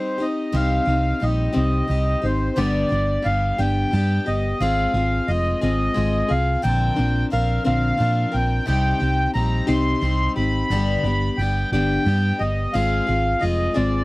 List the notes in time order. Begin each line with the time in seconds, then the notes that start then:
Already playing: G3 C4 D#4 G4 C5
0.18 C4 D#4 G4 D#5
0.52 C2 C3 G3 C4 D#4 G4 F5
0.85 C2 C4 D#4 G4
1.20 A#1 G3 C4 D#4 G4 D#5
1.53 C2 C3 G3 C4 D#4 G4 D#5
1.88 C2 G3 C4 D#4 G4
2.22 G#1 C4 D#4 G4 C5
2.56 G1 G2 D3 G3 B3 D4 G4 D5
2.89 G1 G3 B3 D4 G4
3.22 G1 G3 B3 D4 G4 F5
3.58 G1 G2 D3 G3 B3 D4 G4 G5
3.91 G2 G3 B3 D4 G4
4.26 G1 G3 B3 G4 D#5
4.60 G#1 G#3 C4 F4 G#4 F5
4.94 G#1 C4 F4 G#4
5.28 F1 G#3 C4 F4 G#4 D#5
5.61 G#1 G#3 C4 F4 G#4 D#5
5.94 G#1 G#3 C4 F4 G#4
6.29 C2 C4 F4 G#4 F5
6.62 A#1 A#2 D3 F3 C4 D4 A#4 G5
6.96 A#1 F3 C4 D4 A#4
7.30 A#1 F3 C4 D4 A#4 F5
7.64 A#1 A#2 D3 F3 C4 D4 A#4 F5
7.98 A#2 F3 C4 D4 A#4
8.32 A#1 F3 C4 D4 A#4 G5
8.66 C2 C3 G3 C4 D#4 G4 G5
9.00 C2 C4 D#4 G4
9.34 A#1 G3 C4 D#4 G4 A#5
9.67 C2 C3 G3 C4 D#4 G4 C6
10.02 C2 G3 C4 D#4 G4
10.36 G#1 C4 D#4 G4 B5
10.70 G1 G2 D3 G3 B3 D4 G4
11.03 G1 B3 D4 G4
11.08 G3
11.38 G1 G3 B3 D4 G5
11.43 G4
11.72 G1 G2 D3 G3 B3 D4 G4 G5
12.05 G2 G3 B3 D4 G4
12.39 G1 G3 B3 G4 D#5
12.73 G#1 G#3 C4 F4 G#4 F5
13.07 G#1 C4 F4 G#4
13.39 F1 G#3 C4 F4 G#4 D#5
13.74 G#1 G#3 C4 F4 G#4 D5